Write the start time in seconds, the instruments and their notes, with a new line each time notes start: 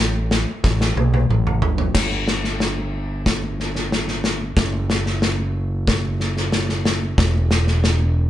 Already playing: fingered electric bass A1
0.31 snare
0.64 fingered electric bass A1, kick, snare
0.81 snare
0.96 fingered electric bass B1, high tom
1.14 high tom
1.29 fingered electric bass A1, mid tom
1.47 mid tom
1.62 fingered electric bass G1, floor tom
1.78 floor tom
1.95 fingered electric bass G1, kick, snare, crash
2.28 snare
2.44 snare
2.60 snare
3.26 kick, snare
3.60 snare
3.76 snare
3.92 snare
4.08 snare
4.24 snare
4.57 fingered electric bass F#1, kick, snare
4.90 snare
5.06 snare
5.22 snare
5.87 kick, snare
6.20 snare
6.37 snare
6.52 snare
6.69 snare
6.85 snare
7.18 fingered electric bass E1, kick, snare
7.51 snare
7.67 snare
7.84 snare